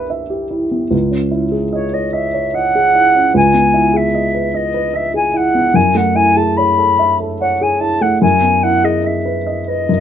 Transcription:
0.00 0.88 C2 medium
0.00 0.71 B3 soft
0.00 0.51 E4 soft
0.00 0.30 G4 soft
0.00 0.10 B4 medium
0.00 0.95 B4 soft
0.00 0.10 E5 soft
0.10 0.43 E5 soft
0.30 0.64 G4 soft
0.51 0.84 E4 soft
0.71 0.92 B3 soft
0.91 3.31 C#2 medium
1.11 1.44 C#4 soft
1.31 1.65 E4 soft
1.52 1.85 G#4 soft
1.73 1.95 C#5 medium
1.73 2.06 D#5 soft
1.93 2.27 C#5 soft
1.93 2.14 D#5 medium
2.13 2.47 D#5 soft
2.13 2.56 E5 medium
2.34 2.67 C#5 soft
2.54 2.87 D#5 soft
2.54 3.35 F#5 medium
2.75 3.08 G#4 soft
2.95 3.27 E4 soft
3.15 3.35 C#4 soft
3.34 5.71 C#2 medium
3.34 3.98 G#5 medium
3.54 3.86 B3 soft
3.74 4.07 E4 soft
3.94 4.27 G#4 soft
3.94 4.58 E5 medium
4.14 4.47 D#5 soft
4.35 4.68 B4 soft
4.54 4.87 D#5 soft
4.54 4.97 D#5 medium
4.74 5.07 B4 soft
4.94 5.26 D#5 medium
4.94 5.15 E5 medium
5.14 5.46 G#4 soft
5.14 5.38 G#5 medium
5.34 5.66 E4 soft
5.34 5.77 F#5 medium
5.55 5.75 B3 soft
5.74 8.18 F#2 medium
5.74 5.98 G#5 medium
5.95 6.28 A3 soft
5.95 6.17 F#5 medium
6.15 6.49 E4 soft
6.15 6.38 G#5 medium
6.37 6.70 G#4 soft
6.37 6.59 A5 medium
6.57 6.92 C#5 soft
6.57 7.17 B5 medium
6.78 7.12 A4 soft
6.99 7.33 E5 soft
7.20 7.53 A4 soft
7.41 7.74 C#5 medium
7.41 7.64 F#5 medium
7.61 7.94 G#4 soft
7.61 7.82 G#5 medium
7.80 8.13 E4 soft
7.80 8.03 A5 medium
8.01 8.22 A3 soft
8.01 8.21 F#5 medium
8.22 9.84 F#2 medium
8.22 8.65 G#5 medium
8.42 8.75 B3 soft
8.63 8.97 E4 soft
8.63 8.86 F#5 medium
8.84 9.17 G#4 soft
8.84 9.08 D#5 medium
9.04 9.38 D#5 soft
9.04 9.70 E5 medium
9.25 9.59 B4 soft
9.47 9.80 D#5 soft
9.68 9.89 B4 soft
9.68 10.00 D#5 medium
9.89 10.00 F#2 medium

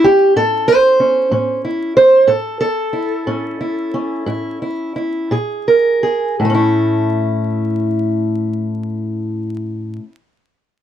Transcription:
0.00 0.99 C#4 medium
0.04 0.36 G4 loud
0.36 0.94 A2 medium
0.36 0.68 A4 loud
0.68 1.64 C5 loud
1.00 1.31 C#4 soft
1.31 1.89 A2 medium
1.31 2.24 C#4 soft
1.64 1.96 E4 soft
1.97 2.28 C5 loud
2.27 2.86 A2 medium
2.27 2.59 A4 loud
2.61 4.61 A4 loud
2.93 3.59 E4 soft
3.27 3.86 A2 medium
3.27 3.93 C#4 soft
3.61 4.26 E4 soft
3.94 5.27 C#4 medium
4.26 4.88 A2 medium
4.26 4.61 E4 medium
4.62 4.95 E4 soft
4.96 5.31 E4 soft
5.31 5.95 A#2 medium
5.31 6.02 G#4 medium
5.68 6.36 A#4 medium
6.03 6.35 G#4 medium
6.40 9.98 A2 medium
6.45 10.03 A3 medium
6.50 10.08 C#4 medium
6.55 10.13 E4 medium

